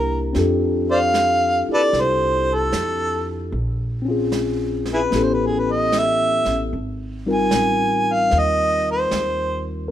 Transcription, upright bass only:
0.00 0.31 C2 medium
0.36 1.65 F2 medium
1.69 muted upright bass stroke soft
1.93 2.69 C2 medium
2.74 3.50 F2 medium
3.52 5.08 A#1 medium
5.12 6.42 A1 medium
6.46 6.70 A1 medium
6.73 7.48 G#1 medium
7.52 8.27 A1 medium
8.32 9.08 D#2 medium
9.12 9.88 D#2 medium

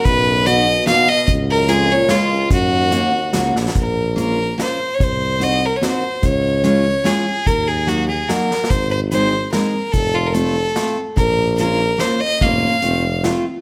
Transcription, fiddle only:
0.05 0.48 B4 loud
0.46 0.86 D#5 loud
0.87 1.10 F5 loud
1.09 1.28 D#5 loud
1.50 1.71 A#4 loud
1.69 1.93 G#4 loud
1.92 2.13 C#5 medium
2.11 2.52 F4 medium
2.53 3.53 F#4 medium
3.79 4.16 A#4 medium
4.19 4.57 A#4 medium
4.62 4.96 C5 medium
4.95 5.05 C#5 medium
5.04 5.45 C5 medium
5.43 5.67 D#5 medium
5.66 5.78 A#4 medium
5.76 5.86 C#5 medium
5.84 6.27 C5 medium
6.25 6.64 C#5 medium
6.65 7.08 C#5 medium
7.06 7.48 G#4 medium
7.47 7.69 A#4 medium
7.68 7.90 G#4 medium
7.88 8.08 F#4 medium
8.08 8.30 G#4 medium
8.29 8.71 A#4 medium
8.70 8.90 C5 medium
8.91 9.00 C5 medium
9.11 9.50 C5 medium
9.52 9.94 A#4 medium
9.92 10.16 A4 medium
10.15 10.28 F4 medium
10.27 10.35 A#4 medium
10.34 10.98 A4 medium
11.16 11.55 A#4 medium
11.59 12.01 A#4 loud
12.00 12.22 C5 medium
12.20 12.44 D#5 loud
12.43 13.25 F5 medium

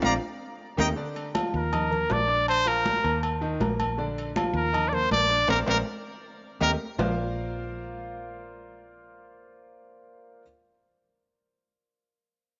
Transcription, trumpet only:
1.56 2.13 A#4 loud
2.12 2.48 D5 loud
2.49 2.69 C5 loud
2.67 3.23 A#4 loud
4.56 4.90 A#4 loud
4.88 4.95 D5 medium
4.94 5.11 C5 loud
5.12 5.46 D5 loud
5.50 5.58 A#4 loud
5.69 5.78 A#4 loud
6.62 6.71 A#4 loud

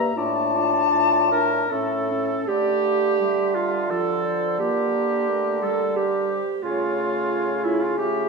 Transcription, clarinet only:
0.00 0.15 G4 medium
0.15 0.53 F4 medium
0.54 1.31 F4 medium
1.32 1.72 A#4 medium
1.70 2.49 A4 medium
2.47 3.57 G4 medium
3.55 3.90 F4 medium
3.90 4.59 A4 medium
4.59 5.60 G4 medium
5.62 5.97 A4 medium
5.96 6.64 G4 medium
6.63 7.66 F4 medium
7.64 7.84 E4 medium
7.82 7.99 F4 medium
7.98 8.29 G4 medium

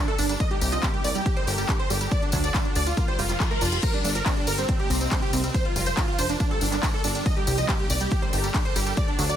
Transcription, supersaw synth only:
0.08 0.17 A4 medium
0.19 0.28 D4 medium
0.29 0.39 D4 medium
0.40 0.49 D#5 loud
0.51 0.60 G4 medium
0.62 0.71 G4 medium
0.72 0.81 D#5 medium
0.83 0.92 G4 medium
0.94 1.03 G4 medium
1.04 1.14 D5 loud
1.15 1.24 G4 medium
1.26 1.35 G4 medium
1.37 1.46 C5 medium
1.47 1.56 G4 medium
1.58 1.67 G4 medium
1.69 1.78 G4 medium
1.79 1.89 C5 medium
1.90 1.99 G4 medium
2.01 2.10 G4 medium
2.12 2.21 D5 loud
2.22 2.31 D4 medium
2.33 2.42 D4 medium
2.44 2.53 D5 medium
2.55 2.64 D4 medium
2.65 2.74 D4 medium
2.76 2.85 D5 loud
2.87 2.96 F4 medium
2.97 3.06 F4 medium
3.08 3.17 C5 medium
3.19 3.28 F4 medium
3.29 3.39 F4 medium
3.40 3.49 F4 medium
3.51 3.60 A#4 medium
3.62 3.71 F4 medium
3.72 3.81 F4 medium
3.83 3.92 A#4 loud
3.94 4.03 D4 medium
4.05 4.14 D4 medium
4.15 4.24 A#4 loud
4.26 4.35 D4 medium
4.37 4.46 D4 medium
4.47 4.56 A#4 medium
4.58 4.67 C4 medium
4.69 4.78 C4 medium
4.80 4.89 G4 medium
4.90 4.99 C4 medium
5.01 5.10 C4 medium
5.12 5.21 C4 medium
5.22 5.31 G4 medium
5.33 5.42 C4 medium
5.44 5.53 C4 medium
5.54 5.64 C5 loud
5.65 5.74 F4 medium
5.76 5.85 F4 medium
5.87 5.96 C5 medium
5.97 6.06 F4 medium
6.08 6.17 F4 medium
6.19 6.28 C5 loud
6.29 6.39 D4 medium
6.40 6.49 D4 medium
6.51 6.60 A4 medium
6.62 6.71 D4 medium
6.72 6.81 D4 medium
6.83 6.92 D4 medium
6.94 7.03 A4 loud
7.05 7.14 D4 medium
7.15 7.24 D4 medium
7.26 7.35 D#5 loud
7.37 7.46 G4 medium
7.47 7.56 G4 medium
7.58 7.67 D#5 loud
7.69 7.78 G4 medium
7.79 7.89 G4 medium
7.90 7.99 D5 loud
8.01 8.10 G4 medium
8.12 8.21 G4 medium
8.22 8.31 C5 medium
8.33 8.42 G4 medium
8.44 8.53 G4 medium
8.54 8.64 G4 medium
8.65 8.74 C5 medium
8.76 8.85 G4 medium
8.87 8.96 G4 medium
8.97 9.06 D5 loud
9.08 9.17 D4 medium
9.19 9.28 D4 medium
9.30 9.37 D5 medium

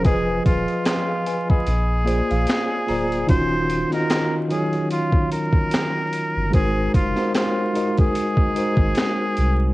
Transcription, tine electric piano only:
0.03 0.48 F3 loud
0.03 0.49 F4 medium
0.03 0.45 G#4 medium
0.03 0.46 B4 medium
0.03 0.46 D#5 loud
1.08 1.26 G#4 medium
1.08 1.25 F5 medium
1.27 1.49 B4 medium
1.27 1.49 G#5 medium
1.50 1.88 D#5 medium
1.50 1.88 B5 medium
2.05 2.67 A#3 medium
2.05 2.68 F4 medium
2.05 2.68 G#4 medium
2.05 2.69 C5 medium
2.05 2.69 D5 medium
2.31 2.47 F5 medium
2.48 2.86 G#5 medium
2.87 3.19 A#3 medium
2.87 3.19 F4 medium
2.87 3.20 G#4 medium
2.87 3.20 C5 medium
2.87 3.20 D5 medium
2.87 3.26 A#5 medium
3.27 3.72 D#3 medium
3.27 3.74 C#4 loud
3.27 3.73 D#4 medium
3.27 3.73 F4 medium
3.27 3.74 F#4 medium
3.91 4.35 D#3 medium
3.91 4.36 D#4 medium
3.91 4.36 F4 medium
3.91 4.36 F#4 medium
3.91 4.37 D#5 medium
4.48 5.67 D#3 medium
4.48 5.69 F#3 medium
4.48 5.68 D#4 medium
4.48 5.68 F4 medium
4.48 5.69 C#5 medium
6.50 6.96 G#3 medium
6.50 6.97 D#4 medium
6.50 6.97 F#4 medium
6.50 6.98 A#4 medium
6.50 6.98 C5 medium
7.16 7.60 G#3 medium
7.16 7.60 D#4 medium
7.16 7.61 F#4 medium
7.16 7.61 A#4 medium
7.16 7.62 C5 medium
7.73 8.35 G#3 medium
7.73 8.36 D#4 medium
7.73 8.36 F#4 medium
7.73 8.37 A#4 medium
7.73 8.37 D#5 medium
8.55 9.44 G#3 medium
8.55 9.45 D#4 medium
8.55 9.45 F#4 medium
8.55 9.46 A#4 medium
8.55 9.46 C5 medium

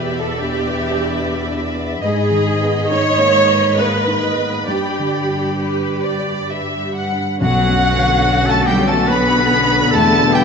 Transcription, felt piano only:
0.00 1.99 E2 soft
0.00 0.27 B2 soft
0.11 0.54 B3 soft
0.38 0.82 D4 soft
0.65 1.09 B4 soft
0.91 1.35 D4 soft
1.19 1.63 B4 soft
1.47 1.91 D4 soft
1.75 2.02 B3 soft
2.03 4.64 G#2 medium
2.31 2.79 D#3 soft
2.61 3.08 B3 soft
2.91 3.37 D#4 soft
3.19 3.65 A#3 soft
3.49 3.95 B4 soft
3.78 4.25 A#3 medium
4.07 4.56 D#4 soft
4.37 4.68 B3 soft
4.68 7.37 G2 soft
4.99 5.47 D3 soft
5.29 5.77 D4 soft
5.59 6.08 G4 soft
5.90 6.39 B4 soft
6.20 6.69 D5 soft
6.52 7.00 B4 soft
6.82 7.30 G4 soft
7.12 7.41 D4 soft
7.41 9.89 B1 medium
7.70 8.15 F#2 soft
7.98 8.43 D3 soft
8.27 8.71 F#4 soft
8.55 8.81 C#5 soft
8.82 9.08 C#5 medium
9.10 9.54 C#5 medium
9.37 9.82 F#4 soft
9.65 9.93 D4 soft
9.93 10.44 E2 medium
10.21 10.44 B2 soft

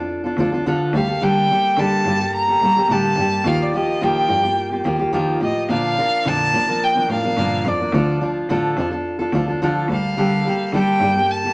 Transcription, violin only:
0.95 1.25 F5 loud
1.23 1.80 G5 loud
1.79 2.34 A5 loud
2.35 2.93 A#5 loud
2.92 3.49 A5 loud
3.48 3.64 F5 loud
3.63 3.78 D5 medium
3.76 4.05 D#5 medium
4.04 4.87 G5 loud
5.43 5.69 D#5 medium
5.71 6.29 F5 loud
6.28 6.85 A5 loud
6.84 7.11 G5 loud
7.12 7.70 F5 loud
7.68 8.23 D5 medium
9.92 10.71 F5 loud
10.76 11.33 G5 loud
11.32 11.53 A5 loud

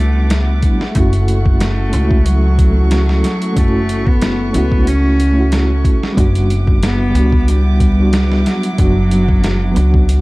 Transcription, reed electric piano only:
0.00 0.61 G3 medium
0.00 0.62 B3 medium
0.00 0.63 D4 medium
0.00 0.97 F#4 loud
0.61 0.91 G3 medium
0.61 0.92 B3 medium
0.61 0.92 D4 medium
0.65 0.93 E4 medium
0.91 1.88 A3 loud
0.91 1.89 C#4 medium
0.97 1.90 E4 medium
0.97 1.92 F#4 loud
1.89 2.70 A3 medium
1.89 2.71 C#4 medium
1.95 2.73 E4 medium
1.95 2.74 F#4 loud
2.72 3.51 A3 medium
2.72 3.52 C#4 medium
2.78 3.53 E4 medium
2.78 3.55 F#4 medium
3.52 4.49 A3 medium
3.52 4.50 C#4 medium
3.57 4.51 E4 medium
3.57 4.52 F#4 loud
4.50 5.31 A3 medium
4.50 5.32 C#4 medium
4.55 5.33 E4 medium
4.55 5.35 F#4 loud
5.32 6.11 A3 medium
5.32 6.13 C#4 medium
5.38 6.14 E4 medium
5.38 6.15 F#4 medium
6.12 7.09 G3 loud
6.12 7.10 B3 medium
6.18 7.12 D4 medium
6.18 7.13 F#4 loud
7.10 7.91 G3 loud
7.10 7.92 B3 medium
7.16 7.94 D4 medium
7.16 7.95 F#4 loud
7.93 8.72 G3 medium
7.93 8.73 B3 medium
7.99 8.75 D4 medium
7.99 8.76 F#4 medium
8.73 9.70 F#3 loud
8.73 9.71 B3 medium
8.78 9.72 D4 medium
8.78 9.74 F#4 loud
9.71 10.21 F#3 loud
9.71 10.21 B3 medium
9.77 10.21 D4 medium
9.77 10.21 F#4 loud

